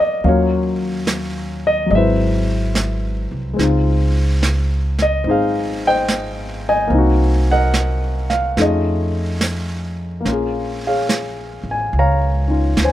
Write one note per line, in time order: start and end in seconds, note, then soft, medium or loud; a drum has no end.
0.00 0.24 G3 soft
0.00 0.23 A#3 soft
0.00 0.25 C4 soft
0.00 0.25 D#4 medium
0.00 0.23 A#4 medium
0.00 0.23 C5 soft
0.00 0.25 D5 medium
0.00 0.27 D#5 medium
0.00 0.25 F5 medium
0.24 1.87 D#2 medium
0.24 1.85 F#3 medium
0.24 1.91 A#3 soft
0.24 1.91 C#4 medium
0.24 1.91 F5 medium
0.24 brush sweep soft
0.28 1.89 F4 soft
0.28 1.89 F#4 soft
0.28 1.06 C#5 medium
1.07 snare soft
1.07 hi-hat pedal medium
1.67 1.89 D#5 medium
1.86 3.55 F#3 soft
1.86 3.52 G#3 soft
1.90 3.25 G#1 medium
1.90 3.55 C4 soft
1.90 1.93 D#5 medium
1.90 brush sweep soft
1.95 3.60 E4 soft
1.95 3.57 B4 medium
1.95 3.56 C5 medium
1.95 3.28 E5 medium
2.75 snare soft
2.75 hi-hat pedal soft
3.31 3.56 C2 medium
3.54 6.89 G#3 soft
3.54 5.22 C4 soft
3.59 5.21 C#2 medium
3.59 5.26 D#4 soft
3.59 brush sweep soft
3.59 snare soft
3.64 6.94 F4 soft
4.43 snare soft
4.43 hi-hat pedal medium
4.99 5.28 D#5 medium
4.99 snare soft
5.24 6.87 G#1 medium
5.24 6.89 C4 soft
5.24 6.92 D#4 soft
5.24 brush sweep soft
5.29 6.90 G#4 medium
5.29 5.87 C5 medium
5.29 5.84 F5 medium
5.87 6.91 C5 medium
5.87 6.67 D#5 medium
5.87 6.69 G5 medium
6.08 snare soft
6.08 hi-hat pedal soft
6.69 7.51 D#5 medium
6.69 7.52 G#5 medium
6.87 8.54 C2 medium
6.87 8.56 A#3 medium
6.87 8.58 C4 medium
6.91 8.58 D#4 medium
6.91 brush sweep soft
6.98 8.62 F#4 medium
7.51 8.57 A#4 medium
7.51 8.57 D#5 medium
7.51 8.35 F#5 medium
7.74 snare soft
7.74 hi-hat pedal soft
8.30 8.59 F5 medium
8.30 snare soft
8.57 10.21 F2 medium
8.57 10.26 A3 soft
8.57 10.23 C#4 soft
8.57 10.26 D#4 soft
8.57 10.26 F4 soft
8.57 brush sweep soft
8.57 snare soft
8.62 10.24 G#4 soft
8.62 10.23 A4 soft
8.62 9.95 D#5 medium
9.41 snare soft
9.41 hi-hat pedal medium
10.21 12.92 A#3 soft
10.25 11.61 A#1 medium
10.25 12.46 C#4 soft
10.25 12.50 F4 soft
10.25 brush sweep soft
10.25 snare soft
10.32 10.86 G#4 soft
10.87 12.48 G#4 medium
10.87 11.97 C#5 soft
10.87 11.70 F5 medium
11.09 snare soft
11.09 hi-hat pedal medium
11.63 11.90 A1 medium
11.71 11.97 G#5 medium
11.93 12.73 C#2 medium
11.93 brush sweep soft
11.99 12.83 C#5 medium
11.99 12.92 F5 medium
11.99 12.82 A#5 medium
12.48 12.92 C#4 soft
12.48 12.92 D#4 soft
12.48 12.92 F4 soft
12.76 12.92 D2 medium
12.76 snare soft
12.76 hi-hat pedal soft
12.84 12.92 C5 medium
12.84 12.92 C#5 soft
12.84 12.92 G#5 medium